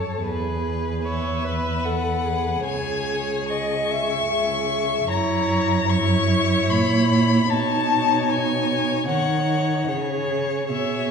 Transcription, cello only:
0, 0, Header, 1, 2, 480
1, 0, Start_track
1, 0, Key_signature, 4, "major"
1, 0, Tempo, 798935
1, 152, Time_signature, 3, 2, 24, 8
1, 1589, Tempo, 836820
1, 2549, Tempo, 793651
1, 5909, Tempo, 829876
1, 6623, End_track
2, 0, Start_track
2, 0, Title_t, "Cello"
2, 0, Program_c, 0, 42
2, 0, Note_on_c, 0, 42, 43
2, 126, Note_off_c, 0, 42, 0
2, 147, Note_on_c, 0, 40, 44
2, 1563, Note_off_c, 0, 40, 0
2, 1585, Note_on_c, 0, 37, 49
2, 2999, Note_off_c, 0, 37, 0
2, 3024, Note_on_c, 0, 42, 58
2, 3994, Note_on_c, 0, 46, 54
2, 4003, Note_off_c, 0, 42, 0
2, 4464, Note_off_c, 0, 46, 0
2, 4468, Note_on_c, 0, 47, 59
2, 5435, Note_on_c, 0, 51, 53
2, 5444, Note_off_c, 0, 47, 0
2, 5909, Note_off_c, 0, 51, 0
2, 5913, Note_on_c, 0, 49, 55
2, 6387, Note_on_c, 0, 47, 46
2, 6396, Note_off_c, 0, 49, 0
2, 6623, Note_off_c, 0, 47, 0
2, 6623, End_track
0, 0, End_of_file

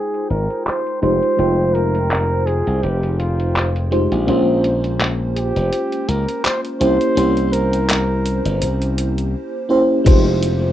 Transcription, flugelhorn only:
0, 0, Header, 1, 2, 480
1, 0, Start_track
1, 0, Key_signature, -4, "minor"
1, 0, Tempo, 722892
1, 921, Time_signature, 4, 2, 24, 8
1, 7121, End_track
2, 0, Start_track
2, 0, Title_t, "Flugelhorn"
2, 0, Program_c, 0, 56
2, 0, Note_on_c, 0, 68, 97
2, 185, Note_off_c, 0, 68, 0
2, 198, Note_on_c, 0, 70, 96
2, 422, Note_off_c, 0, 70, 0
2, 439, Note_on_c, 0, 72, 107
2, 663, Note_off_c, 0, 72, 0
2, 676, Note_on_c, 0, 72, 112
2, 1155, Note_on_c, 0, 70, 102
2, 1165, Note_off_c, 0, 72, 0
2, 1634, Note_on_c, 0, 68, 96
2, 1644, Note_off_c, 0, 70, 0
2, 1876, Note_on_c, 0, 67, 88
2, 1886, Note_off_c, 0, 68, 0
2, 2112, Note_off_c, 0, 67, 0
2, 2116, Note_on_c, 0, 65, 83
2, 2572, Note_off_c, 0, 65, 0
2, 3564, Note_on_c, 0, 67, 103
2, 4042, Note_on_c, 0, 70, 96
2, 4052, Note_off_c, 0, 67, 0
2, 4277, Note_off_c, 0, 70, 0
2, 4281, Note_on_c, 0, 72, 100
2, 4387, Note_off_c, 0, 72, 0
2, 4521, Note_on_c, 0, 72, 110
2, 4999, Note_on_c, 0, 70, 103
2, 5009, Note_off_c, 0, 72, 0
2, 5960, Note_off_c, 0, 70, 0
2, 7121, End_track
0, 0, End_of_file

